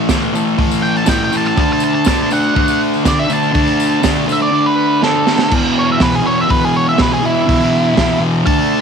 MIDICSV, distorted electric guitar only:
0, 0, Header, 1, 2, 480
1, 0, Start_track
1, 0, Tempo, 492611
1, 1529, Time_signature, 4, 2, 24, 8
1, 8586, End_track
2, 0, Start_track
2, 0, Title_t, "Distorted electric guitar"
2, 0, Program_c, 0, 30
2, 0, Note_on_c, 0, 57, 105
2, 98, Note_on_c, 0, 52, 86
2, 99, Note_on_c, 0, 45, 80
2, 103, Note_off_c, 0, 57, 0
2, 107, Note_on_c, 0, 57, 92
2, 313, Note_off_c, 0, 45, 0
2, 323, Note_off_c, 0, 52, 0
2, 325, Note_on_c, 0, 45, 99
2, 335, Note_on_c, 0, 52, 101
2, 338, Note_off_c, 0, 57, 0
2, 342, Note_on_c, 0, 57, 104
2, 551, Note_off_c, 0, 45, 0
2, 558, Note_off_c, 0, 52, 0
2, 563, Note_on_c, 0, 45, 108
2, 570, Note_on_c, 0, 52, 114
2, 572, Note_off_c, 0, 57, 0
2, 576, Note_on_c, 0, 57, 103
2, 1021, Note_off_c, 0, 45, 0
2, 1028, Note_off_c, 0, 52, 0
2, 1033, Note_on_c, 0, 45, 83
2, 1037, Note_off_c, 0, 57, 0
2, 1039, Note_on_c, 0, 52, 87
2, 1041, Note_on_c, 0, 57, 89
2, 1281, Note_off_c, 0, 52, 0
2, 1282, Note_off_c, 0, 45, 0
2, 1293, Note_on_c, 0, 45, 93
2, 1293, Note_on_c, 0, 52, 91
2, 1302, Note_off_c, 0, 57, 0
2, 1306, Note_on_c, 0, 57, 90
2, 1517, Note_off_c, 0, 45, 0
2, 1517, Note_off_c, 0, 52, 0
2, 1530, Note_on_c, 0, 50, 93
2, 1537, Note_off_c, 0, 57, 0
2, 1540, Note_on_c, 0, 62, 102
2, 1542, Note_on_c, 0, 57, 93
2, 2012, Note_off_c, 0, 50, 0
2, 2016, Note_on_c, 0, 50, 85
2, 2019, Note_off_c, 0, 62, 0
2, 2021, Note_off_c, 0, 57, 0
2, 2023, Note_on_c, 0, 62, 92
2, 2025, Note_on_c, 0, 57, 79
2, 2252, Note_off_c, 0, 50, 0
2, 2256, Note_off_c, 0, 57, 0
2, 2256, Note_on_c, 0, 50, 97
2, 2260, Note_on_c, 0, 57, 106
2, 2265, Note_off_c, 0, 62, 0
2, 2269, Note_on_c, 0, 62, 109
2, 2476, Note_off_c, 0, 50, 0
2, 2479, Note_off_c, 0, 57, 0
2, 2488, Note_on_c, 0, 50, 104
2, 2490, Note_off_c, 0, 62, 0
2, 2490, Note_on_c, 0, 57, 102
2, 2501, Note_on_c, 0, 62, 107
2, 2952, Note_off_c, 0, 50, 0
2, 2954, Note_off_c, 0, 57, 0
2, 2963, Note_on_c, 0, 50, 93
2, 2965, Note_on_c, 0, 57, 96
2, 2967, Note_off_c, 0, 62, 0
2, 2979, Note_on_c, 0, 62, 107
2, 3182, Note_off_c, 0, 50, 0
2, 3194, Note_on_c, 0, 50, 99
2, 3195, Note_off_c, 0, 57, 0
2, 3203, Note_off_c, 0, 62, 0
2, 3206, Note_on_c, 0, 57, 86
2, 3215, Note_on_c, 0, 62, 99
2, 3420, Note_off_c, 0, 50, 0
2, 3432, Note_on_c, 0, 50, 92
2, 3433, Note_off_c, 0, 57, 0
2, 3434, Note_off_c, 0, 62, 0
2, 3444, Note_on_c, 0, 57, 92
2, 3445, Note_on_c, 0, 62, 114
2, 3902, Note_off_c, 0, 50, 0
2, 3912, Note_off_c, 0, 57, 0
2, 3914, Note_on_c, 0, 50, 91
2, 3917, Note_off_c, 0, 62, 0
2, 3923, Note_on_c, 0, 57, 88
2, 3929, Note_on_c, 0, 62, 92
2, 4150, Note_off_c, 0, 50, 0
2, 4157, Note_off_c, 0, 57, 0
2, 4162, Note_on_c, 0, 50, 100
2, 4168, Note_off_c, 0, 62, 0
2, 4169, Note_on_c, 0, 57, 98
2, 4179, Note_on_c, 0, 62, 114
2, 4384, Note_off_c, 0, 50, 0
2, 4394, Note_off_c, 0, 57, 0
2, 4394, Note_off_c, 0, 62, 0
2, 4396, Note_on_c, 0, 50, 101
2, 4405, Note_on_c, 0, 57, 90
2, 4406, Note_on_c, 0, 62, 104
2, 4875, Note_off_c, 0, 50, 0
2, 4887, Note_on_c, 0, 50, 89
2, 4888, Note_off_c, 0, 57, 0
2, 4896, Note_off_c, 0, 62, 0
2, 4900, Note_on_c, 0, 57, 84
2, 4907, Note_on_c, 0, 62, 96
2, 5121, Note_off_c, 0, 50, 0
2, 5126, Note_off_c, 0, 57, 0
2, 5128, Note_off_c, 0, 62, 0
2, 5132, Note_on_c, 0, 50, 84
2, 5137, Note_on_c, 0, 57, 95
2, 5140, Note_on_c, 0, 62, 94
2, 5356, Note_on_c, 0, 40, 99
2, 5358, Note_off_c, 0, 50, 0
2, 5361, Note_off_c, 0, 57, 0
2, 5362, Note_off_c, 0, 62, 0
2, 5364, Note_on_c, 0, 47, 100
2, 5372, Note_on_c, 0, 52, 93
2, 5824, Note_off_c, 0, 40, 0
2, 5836, Note_on_c, 0, 40, 76
2, 5837, Note_off_c, 0, 47, 0
2, 5840, Note_off_c, 0, 52, 0
2, 5849, Note_on_c, 0, 47, 90
2, 5852, Note_on_c, 0, 52, 80
2, 6052, Note_off_c, 0, 40, 0
2, 6060, Note_off_c, 0, 47, 0
2, 6062, Note_off_c, 0, 52, 0
2, 6064, Note_on_c, 0, 40, 96
2, 6072, Note_on_c, 0, 47, 87
2, 6074, Note_on_c, 0, 52, 91
2, 6303, Note_off_c, 0, 40, 0
2, 6310, Note_off_c, 0, 47, 0
2, 6314, Note_off_c, 0, 52, 0
2, 6315, Note_on_c, 0, 40, 101
2, 6322, Note_on_c, 0, 47, 93
2, 6326, Note_on_c, 0, 52, 101
2, 6765, Note_off_c, 0, 40, 0
2, 6770, Note_off_c, 0, 47, 0
2, 6777, Note_on_c, 0, 40, 87
2, 6778, Note_off_c, 0, 52, 0
2, 6782, Note_on_c, 0, 47, 94
2, 6790, Note_on_c, 0, 52, 97
2, 7007, Note_off_c, 0, 40, 0
2, 7019, Note_on_c, 0, 40, 82
2, 7021, Note_off_c, 0, 47, 0
2, 7023, Note_off_c, 0, 52, 0
2, 7032, Note_on_c, 0, 47, 94
2, 7035, Note_on_c, 0, 52, 97
2, 7256, Note_off_c, 0, 40, 0
2, 7261, Note_off_c, 0, 52, 0
2, 7264, Note_off_c, 0, 47, 0
2, 7268, Note_on_c, 0, 40, 89
2, 7273, Note_on_c, 0, 52, 92
2, 7276, Note_on_c, 0, 47, 103
2, 7730, Note_off_c, 0, 40, 0
2, 7739, Note_off_c, 0, 47, 0
2, 7742, Note_on_c, 0, 40, 88
2, 7751, Note_on_c, 0, 47, 97
2, 7753, Note_off_c, 0, 52, 0
2, 7765, Note_on_c, 0, 52, 89
2, 7972, Note_off_c, 0, 40, 0
2, 7978, Note_off_c, 0, 47, 0
2, 7983, Note_on_c, 0, 40, 109
2, 7985, Note_off_c, 0, 52, 0
2, 7989, Note_on_c, 0, 47, 109
2, 7997, Note_on_c, 0, 52, 109
2, 8222, Note_off_c, 0, 40, 0
2, 8225, Note_off_c, 0, 47, 0
2, 8229, Note_off_c, 0, 52, 0
2, 8232, Note_on_c, 0, 50, 113
2, 8238, Note_on_c, 0, 62, 111
2, 8239, Note_on_c, 0, 57, 121
2, 8586, Note_off_c, 0, 50, 0
2, 8586, Note_off_c, 0, 57, 0
2, 8586, Note_off_c, 0, 62, 0
2, 8586, End_track
0, 0, End_of_file